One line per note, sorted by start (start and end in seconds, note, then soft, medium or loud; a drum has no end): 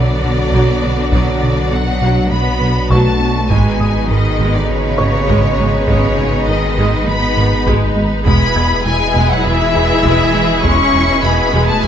0.00 3.53 B1 medium
0.00 0.12 B2 soft
0.00 3.47 B2 medium
0.00 1.11 D3 medium
0.00 3.47 F#3 medium
0.00 3.47 B3 medium
0.00 3.47 D4 medium
0.00 3.46 F#4 medium
0.00 1.10 D5 medium
0.00 1.09 D6 soft
0.24 0.32 B1 soft
0.24 0.42 B2 medium
0.24 0.32 D3 soft
0.52 0.60 B1 medium
0.52 0.71 B2 medium
0.52 0.82 F#3 medium
0.52 taiko medium
0.83 0.91 B1 soft
0.83 0.91 F#3 soft
0.83 1.01 B3 soft
1.12 1.21 B1 medium
1.12 1.30 B2 medium
1.12 1.71 D3 medium
1.12 1.41 F#3 medium
1.12 1.71 D5 medium
1.12 taiko medium
1.42 1.51 B1 soft
1.42 1.61 B2 medium
1.42 1.50 F#3 soft
1.71 1.81 B1 soft
1.71 1.90 B2 soft
1.71 1.81 D3 soft
1.71 2.32 F#3 medium
1.71 2.31 F#5 medium
2.01 2.11 B1 medium
2.01 2.19 B2 medium
2.01 2.30 F#3 medium
2.31 2.40 B1 soft
2.31 2.49 B2 soft
2.31 2.40 F#3 soft
2.31 2.91 B3 medium
2.31 2.90 B5 medium
2.61 2.70 B1 soft
2.61 2.79 B2 medium
2.61 2.71 D3 soft
2.90 2.99 B1 medium
2.90 3.08 B2 medium
2.90 3.19 F#3 medium
2.90 3.50 A3 medium
2.90 4.65 B4 soft
2.90 3.49 A5 medium
2.90 4.65 C#6 soft
2.90 taiko medium
3.20 3.28 B1 soft
3.20 3.29 F#3 soft
3.20 3.38 B3 medium
3.49 3.58 G#1 medium
3.49 8.28 G#1 medium
3.49 3.68 G#2 medium
3.49 8.08 B2 medium
3.49 8.08 G#3 medium
3.49 3.78 G#3 medium
3.49 4.10 G#3 medium
3.49 8.22 B3 medium
3.49 8.22 D#4 medium
3.49 8.22 B4 medium
3.49 4.09 G#5 medium
3.49 taiko medium
3.79 3.87 G#1 soft
3.79 3.98 G#2 medium
3.79 3.88 G#3 soft
3.79 5.54 D#6 soft
4.09 4.17 G#1 soft
4.09 4.28 G#2 soft
4.09 4.54 D#3 medium
4.09 4.18 D#3 soft
4.09 4.53 D#5 medium
4.39 4.47 G#1 medium
4.39 4.58 G#2 medium
4.39 4.68 G#3 soft
4.54 4.69 D3 soft
4.54 4.70 D5 medium
4.68 4.77 G#1 soft
4.68 4.87 G#2 medium
4.68 5.87 C#3 medium
4.68 4.78 G#3 soft
4.68 5.87 C#5 medium
4.98 5.07 G#1 soft
4.98 5.17 G#2 medium
4.98 5.07 D#3 soft
4.98 6.73 C#5 soft
4.98 6.73 C#6 medium
5.28 5.37 G#1 medium
5.28 5.47 G#2 medium
5.28 5.56 G#3 medium
5.28 taiko medium
5.58 5.67 G#1 soft
5.58 5.66 G#3 soft
5.58 5.77 G#3 medium
5.88 5.97 G#1 medium
5.88 6.06 G#2 medium
5.88 6.46 C#3 medium
5.88 6.16 G#3 medium
5.88 6.46 C#5 medium
5.88 taiko medium
6.18 6.27 G#1 soft
6.18 6.36 G#2 medium
6.18 6.26 G#3 soft
6.47 6.57 G#1 soft
6.47 6.66 G#2 medium
6.47 6.55 D#3 soft
6.47 7.06 D#3 medium
6.47 7.07 D#5 medium
6.77 6.86 G#1 medium
6.77 6.96 G#2 medium
6.77 7.05 G#3 medium
7.07 7.16 G#1 soft
7.07 7.25 G#2 medium
7.07 7.16 G#3 soft
7.07 7.67 B3 medium
7.07 7.65 B5 medium
7.37 7.46 G#1 soft
7.37 7.54 G#2 medium
7.37 7.45 D#3 medium
7.66 7.75 G#1 medium
7.66 7.84 G#2 medium
7.66 7.94 G#3 medium
7.66 taiko medium
7.96 8.04 G#1 medium
7.96 8.14 G#3 medium
7.96 8.04 G#3 medium
8.25 8.34 E1 medium
8.25 11.88 E1 medium
8.25 8.44 E2 medium
8.25 11.88 B2 medium
8.25 8.53 G#3 medium
8.25 11.88 G#3 medium
8.25 8.82 B3 medium
8.25 11.88 E4 medium
8.25 11.88 G#4 medium
8.25 11.88 B4 medium
8.25 8.82 B5 medium
8.25 taiko medium
8.56 8.64 E1 medium
8.56 8.73 E2 medium
8.56 8.64 G#3 medium
8.56 10.30 G#6 soft
8.85 8.94 E1 medium
8.85 9.03 E2 medium
8.85 8.94 E3 soft
8.85 9.29 G#3 medium
8.85 9.30 G#5 medium
9.15 9.23 E1 medium
9.15 9.33 E2 medium
9.15 9.43 G#3 medium
9.31 9.45 F#3 medium
9.31 9.45 F#5 medium
9.44 9.53 E1 medium
9.44 9.63 E2 soft
9.44 10.64 E3 medium
9.44 9.53 G#3 medium
9.44 10.63 E5 medium
9.74 9.82 E1 soft
9.74 9.93 E2 medium
9.74 9.83 E3 medium
10.04 10.12 E1 medium
10.04 10.23 E2 medium
10.04 10.32 G#3 medium
10.04 taiko medium
10.34 10.42 E1 medium
10.34 10.52 E3 medium
10.34 10.42 G#3 soft
10.63 10.72 E1 medium
10.63 10.82 E2 medium
10.63 10.91 G#3 medium
10.63 11.22 C#4 medium
10.63 11.22 C#6 loud
10.63 taiko medium
10.94 11.02 E1 medium
10.94 11.11 E2 medium
10.94 11.02 G#3 medium
11.23 11.31 E1 medium
11.23 11.41 E2 medium
11.23 11.31 E3 medium
11.23 11.68 B3 medium
11.23 11.68 B5 medium
11.54 11.62 E1 medium
11.54 11.71 E2 medium
11.54 11.81 G#3 medium
11.67 11.82 A3 medium
11.67 11.82 A5 medium
11.81 11.88 E1 soft
11.81 11.88 E2 medium
11.81 11.88 G#3 medium
11.81 11.88 G#5 medium